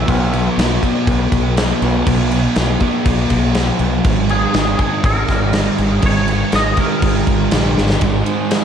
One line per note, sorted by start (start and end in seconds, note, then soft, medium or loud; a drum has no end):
0.06 0.47 B1 loud
0.06 0.57 B2 medium
0.06 0.34 F#3 medium
0.06 0.32 B3 medium
0.06 kick loud
0.06 crash medium
0.32 0.58 F#3 medium
0.32 0.59 B3 medium
0.32 crash medium
0.57 0.77 B1 loud
0.57 1.56 B2 medium
0.57 0.83 F#3 medium
0.57 0.81 B3 medium
0.57 snare loud
0.57 crash medium
0.82 1.56 F#3 medium
0.82 1.57 B3 medium
0.82 kick medium
0.82 crash medium
1.07 1.27 B1 loud
1.07 kick loud
1.07 crash medium
1.32 1.71 B1 medium
1.32 kick medium
1.32 crash medium
1.56 2.05 B2 medium
1.56 1.82 F#3 loud
1.56 1.80 B3 loud
1.56 snare loud
1.56 crash medium
1.81 2.01 B1 medium
1.81 2.06 F#3 soft
1.81 2.07 B3 medium
1.81 crash medium
2.06 2.46 B1 loud
2.06 2.54 B2 medium
2.06 2.32 F#3 medium
2.06 2.30 B3 loud
2.06 kick loud
2.06 crash medium
2.31 2.55 F#3 medium
2.31 2.56 B3 medium
2.31 crash medium
2.55 2.76 B1 loud
2.55 3.05 B2 medium
2.55 2.81 F#3 medium
2.55 2.79 B3 medium
2.55 snare loud
2.55 crash medium
2.80 3.54 F#3 medium
2.80 3.55 B3 medium
2.80 kick medium
2.80 crash medium
3.05 3.25 B1 medium
3.05 kick loud
3.05 crash medium
3.30 3.70 B1 medium
3.30 kick medium
3.30 crash medium
3.54 4.03 B2 loud
3.54 3.80 F#3 loud
3.54 3.78 B3 loud
3.54 snare loud
3.54 crash medium
3.79 3.99 B1 medium
3.79 4.04 F#3 medium
3.79 4.03 B3 medium
3.79 crash medium
4.03 4.44 G#1 loud
4.03 4.53 G#2 medium
4.03 4.30 D#3 loud
4.03 4.29 G#3 medium
4.03 kick loud
4.03 crash medium
4.29 4.53 D#3 medium
4.29 4.55 G#3 medium
4.29 5.05 G#4 medium
4.29 crash medium
4.53 4.74 G#1 medium
4.53 5.52 G#2 medium
4.53 4.79 D#3 medium
4.53 4.78 G#3 medium
4.53 snare loud
4.53 crash medium
4.78 5.52 D#3 medium
4.78 5.54 G#3 medium
4.78 kick medium
4.78 crash medium
5.04 5.24 G#1 loud
5.04 5.76 A#4 medium
5.04 kick loud
5.04 crash medium
5.28 5.68 G#1 medium
5.28 kick medium
5.28 snare soft
5.28 crash medium
5.52 6.01 G#2 loud
5.52 5.79 D#3 loud
5.52 5.77 G#3 loud
5.52 snare loud
5.52 crash medium
5.76 5.98 G#1 medium
5.76 6.01 D#3 medium
5.76 6.02 G#3 medium
5.76 6.07 G#4 medium
5.76 crash medium
6.01 6.42 G#1 loud
6.01 6.51 G#2 medium
6.01 6.28 D#3 medium
6.01 6.26 G#3 loud
6.01 kick loud
6.01 crash medium
6.06 6.55 C#5 medium
6.27 6.52 D#3 medium
6.27 6.53 G#3 medium
6.27 crash medium
6.52 6.72 G#1 medium
6.52 7.02 G#2 medium
6.52 6.77 D#3 medium
6.52 6.75 G#3 medium
6.52 6.79 D#5 loud
6.52 snare loud
6.52 crash medium
6.76 7.51 D#3 medium
6.76 7.52 G#3 medium
6.76 7.74 A#4 loud
6.76 kick medium
6.76 crash medium
7.02 7.22 G#1 medium
7.02 kick loud
7.02 crash medium
7.27 7.47 G#1 medium
7.27 kick medium
7.27 crash medium
7.51 7.74 A#1 medium
7.51 7.99 G#2 medium
7.51 7.76 D#3 loud
7.51 7.74 G#3 loud
7.51 snare loud
7.51 crash medium
7.76 7.99 G#1 medium
7.76 8.00 D#3 medium
7.76 7.99 G#3 medium
7.76 snare medium
7.90 snare medium
8.01 8.21 G#1 loud
8.01 8.50 G#2 medium
8.01 8.51 D#3 medium
8.01 8.52 G#3 medium
8.01 kick loud
8.01 ride medium
8.26 ride medium
8.51 8.64 G#2 medium
8.51 8.64 D#3 medium
8.51 8.64 G#3 medium
8.51 snare loud
8.51 ride medium